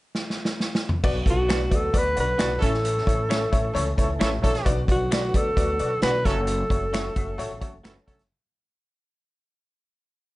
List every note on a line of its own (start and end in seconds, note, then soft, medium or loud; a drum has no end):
0.15 snare medium
0.30 snare soft
0.45 snare medium
0.60 snare medium
0.75 snare medium
0.89 floor tom medium
1.03 1.23 B1 medium
1.03 1.67 B2 medium
1.03 2.61 D3 medium
1.03 2.61 F#3 medium
1.03 1.15 B3 loud
1.03 2.61 B3 medium
1.03 1.15 F#4 medium
1.03 2.61 F#4 medium
1.03 1.16 D5 loud
1.03 kick medium
1.03 crash medium
1.26 1.65 B1 medium
1.26 1.38 B3 medium
1.26 1.38 F#4 medium
1.26 1.38 A4 medium
1.26 kick medium
1.26 closed hi-hat medium
1.30 1.77 F#4 medium
1.49 1.58 B3 medium
1.49 1.60 B3 medium
1.49 1.58 D4 medium
1.49 1.61 F#4 medium
1.49 1.59 F#4 medium
1.49 1.61 D5 medium
1.49 1.59 D5 medium
1.49 finger snap medium
1.49 snare loud
1.49 closed hi-hat medium
1.70 1.91 D2 medium
1.70 1.83 B3 medium
1.70 1.83 F#4 medium
1.70 1.83 D5 medium
1.70 kick medium
1.70 closed hi-hat medium
1.75 1.99 A4 medium
1.93 2.13 D2 medium
1.93 2.04 D3 medium
1.93 2.05 B3 medium
1.93 2.04 B3 medium
1.93 2.05 F#4 medium
1.93 2.03 F#4 medium
1.93 2.06 D5 medium
1.93 kick medium
1.93 closed hi-hat loud
1.98 2.19 B4 loud
2.16 2.36 B1 medium
2.16 2.26 D3 medium
2.16 2.28 B3 medium
2.16 2.26 B3 medium
2.16 2.26 F#4 medium
2.16 2.28 F#4 medium
2.16 2.29 D5 medium
2.16 closed hi-hat medium
2.20 2.65 B4 loud
2.38 2.59 B1 medium
2.38 2.45 D3 medium
2.38 2.45 B3 medium
2.38 2.48 B3 medium
2.38 2.50 B3 medium
2.38 2.49 D4 medium
2.38 2.46 F#4 medium
2.38 2.51 F#4 medium
2.38 2.49 F#4 medium
2.38 2.51 D5 medium
2.38 2.49 D5 medium
2.38 finger snap medium
2.38 snare loud
2.38 closed hi-hat medium
2.59 3.01 A1 loud
2.59 3.26 A2 medium
2.59 2.75 E3 medium
2.59 2.98 A3 medium
2.59 2.75 C#4 medium
2.59 2.69 C#4 medium
2.59 2.69 E4 medium
2.59 2.98 E4 medium
2.59 2.75 A4 loud
2.59 2.70 A4 medium
2.59 3.99 A4 medium
2.59 2.98 C#5 medium
2.59 2.70 C#5 medium
2.59 kick medium
2.59 closed hi-hat medium
2.63 4.65 E3 medium
2.63 4.65 A3 medium
2.63 4.65 C#4 medium
2.63 4.65 A4 medium
2.74 snare soft
2.85 closed hi-hat medium
2.98 snare soft
3.06 3.45 A1 medium
3.06 3.18 A3 medium
3.06 3.18 E4 medium
3.06 3.19 C#5 medium
3.06 kick loud
3.06 closed hi-hat medium
3.29 3.41 A3 medium
3.29 3.39 C#4 medium
3.29 3.39 E4 medium
3.29 3.42 E4 medium
3.29 3.40 A4 medium
3.29 3.42 C#5 medium
3.29 3.40 C#5 medium
3.29 finger snap medium
3.29 snare medium
3.29 closed hi-hat medium
3.51 3.72 A1 medium
3.51 3.64 A3 medium
3.51 3.64 E4 medium
3.51 3.64 C#5 medium
3.51 kick medium
3.51 closed hi-hat medium
3.74 3.95 C#2 loud
3.74 3.85 E3 medium
3.74 3.86 A3 loud
3.74 3.85 C#4 medium
3.74 3.86 E4 medium
3.74 3.85 A4 medium
3.74 3.87 C#5 loud
3.74 closed hi-hat loud
3.97 4.17 C#2 medium
3.97 4.07 E3 medium
3.97 4.09 A3 medium
3.97 4.07 C#4 medium
3.97 4.10 E4 medium
3.97 4.07 A4 medium
3.97 4.10 C#5 medium
3.97 kick medium
3.97 closed hi-hat medium
4.19 4.40 A1 medium
4.19 4.28 E3 medium
4.19 4.32 A3 medium
4.19 4.30 C#4 medium
4.19 4.28 C#4 medium
4.19 4.30 E4 medium
4.19 4.32 E4 medium
4.19 4.30 A4 medium
4.19 4.28 A4 loud
4.19 4.32 C#5 medium
4.19 4.30 C#5 medium
4.19 finger snap medium
4.19 snare loud
4.19 closed hi-hat medium
4.42 4.63 A#1 medium
4.42 4.72 F#3 medium
4.42 4.55 A3 medium
4.42 4.72 D4 medium
4.42 4.55 E4 medium
4.42 4.72 A4 loud
4.42 4.55 C#5 medium
4.42 kick medium
4.42 closed hi-hat medium
4.55 snare soft
4.55 closed hi-hat soft
4.65 4.85 B1 loud
4.65 5.30 B2 medium
4.65 6.25 D3 medium
4.65 8.27 F#3 medium
4.65 4.77 B3 loud
4.65 6.25 B3 medium
4.65 4.78 F#4 loud
4.65 6.25 F#4 medium
4.65 4.78 D5 loud
4.65 kick loud
4.65 closed hi-hat medium
4.88 5.27 B1 medium
4.88 5.00 B3 medium
4.88 5.00 F#4 medium
4.88 5.38 F#4 medium
4.88 5.01 D5 medium
4.88 kick medium
4.88 closed hi-hat medium
5.11 5.23 B3 medium
5.11 5.21 D4 medium
5.11 5.21 F#4 medium
5.11 5.23 F#4 medium
5.11 5.21 B4 medium
5.11 5.21 D5 loud
5.11 5.24 D5 medium
5.11 finger snap medium
5.11 snare medium
5.11 closed hi-hat medium
5.34 5.54 D2 medium
5.34 5.46 B3 medium
5.34 5.46 F#4 medium
5.34 6.02 A4 loud
5.34 5.46 D5 medium
5.34 kick medium
5.34 closed hi-hat medium
5.56 5.76 D2 loud
5.56 5.67 D3 medium
5.56 5.69 B3 medium
5.56 5.67 B3 medium
5.56 5.69 F#4 medium
5.56 5.67 F#4 medium
5.56 5.69 D5 medium
5.56 kick loud
5.56 closed hi-hat medium
5.79 5.99 B1 medium
5.79 5.90 D3 medium
5.79 5.91 B3 medium
5.79 5.92 F#4 medium
5.79 5.90 F#4 medium
5.79 5.92 D5 medium
5.79 closed hi-hat medium
6.02 6.22 B1 medium
6.02 6.10 D3 medium
6.02 6.14 B3 medium
6.02 6.10 B3 loud
6.02 6.12 D4 medium
6.02 6.14 F#4 medium
6.02 6.12 F#4 medium
6.02 6.10 F#4 loud
6.02 6.27 B4 loud
6.02 6.12 B4 medium
6.02 6.15 D5 medium
6.02 6.13 D5 medium
6.02 finger snap medium
6.02 snare medium
6.02 closed hi-hat medium
6.24 6.64 F#1 loud
6.24 6.41 F#3 medium
6.24 6.62 A3 medium
6.24 8.28 A3 medium
6.24 6.32 C#4 medium
6.24 6.40 C#4 medium
6.24 8.29 C#4 medium
6.24 6.33 F#4 medium
6.24 6.62 F#4 medium
6.24 7.85 A4 medium
6.24 6.33 A4 medium
6.24 6.40 A4 loud
6.24 8.29 A4 medium
6.24 6.33 C#5 medium
6.24 6.62 C#5 medium
6.24 kick medium
6.24 closed hi-hat medium
6.47 closed hi-hat medium
6.70 7.09 F#1 medium
6.70 6.82 A3 medium
6.70 6.83 F#4 medium
6.70 6.83 C#5 medium
6.70 kick medium
6.70 closed hi-hat medium
6.93 7.05 A3 medium
6.93 7.03 C#4 medium
6.93 7.05 F#4 medium
6.93 7.03 F#4 medium
6.93 7.04 A4 medium
6.93 7.05 C#5 loud
6.93 7.04 C#5 medium
6.93 finger snap medium
6.93 snare loud
6.93 closed hi-hat medium
7.16 7.36 F#1 medium
7.16 7.28 A3 medium
7.16 7.28 F#4 medium
7.16 7.28 E5 medium
7.16 kick medium
7.16 closed hi-hat medium
7.38 7.49 A1 medium
7.38 7.49 F#3 medium
7.38 7.50 A3 loud
7.38 7.49 C#4 medium
7.38 7.51 F#4 medium
7.38 7.49 A4 medium
7.38 7.51 C#5 loud
7.38 closed hi-hat medium
7.51 7.60 A1 medium
7.60 7.72 F#3 medium
7.60 7.73 A3 medium
7.60 7.72 C#4 medium
7.60 7.73 F#4 medium
7.60 7.71 A4 medium
7.60 7.74 C#5 medium
7.60 kick medium
7.60 closed hi-hat medium
7.74 7.83 F#1 medium
7.83 7.95 F#1 medium
7.83 7.91 F#3 medium
7.83 7.96 A3 medium
7.83 7.91 C#4 medium
7.83 7.94 C#4 medium
7.83 7.96 F#4 medium
7.83 7.94 F#4 medium
7.83 7.92 A4 medium
7.83 7.94 A4 medium
7.83 7.96 B4 medium
7.83 7.95 C#5 medium
7.83 finger snap medium
7.83 snare medium
7.83 closed hi-hat medium
8.06 8.17 E1 medium
8.06 8.21 F#3 medium
8.06 8.19 A3 medium
8.06 8.21 C#4 medium
8.06 8.19 F#4 medium
8.06 8.21 A4 medium
8.06 8.19 C#5 medium
8.06 kick medium
8.06 closed hi-hat medium
8.19 8.29 F#1 medium
8.19 snare soft
8.19 closed hi-hat soft